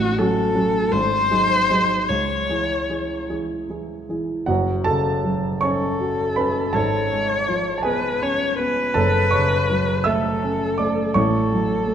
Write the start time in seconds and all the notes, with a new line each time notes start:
Already playing: A1 F#4
0.19 F#3 C#4 F#4 A4
0.55 F#3 C#4 F#4
0.92 G#1 C5
1.31 F#3 D#4 G#4
1.70 F#3 D#4 G#4
2.09 C#2 C#5
2.49 E3 E4 G#4
2.89 E3 E4 G#4
3.29 E3 E4 G#4
3.69 E3 E4 G#4
4.09 E3 E4 G#4
4.46 F#1 F#2 F#4 F#5
4.84 C#3 A4 A5
5.24 F#3
5.61 C#4 A4 C#5 C#6
6.00 F#4
6.36 C#4 B4 B5
6.73 G#1 G#2 A4 C#5 A5
7.12 G#3
7.49 F3
7.78 A5
7.83 B3 G#4 B4 G#5
8.22 C#4 C#5
8.59 B3 B4
8.94 F#1 F#2 A4 A5
9.31 C#3 C#5 C#6
9.70 F#3
10.04 A3 A4 E5 E6
10.44 C#4
10.78 A3 D5 D6
11.14 A1 A2 A4 C#5 C#6
11.52 F#3
11.87 A3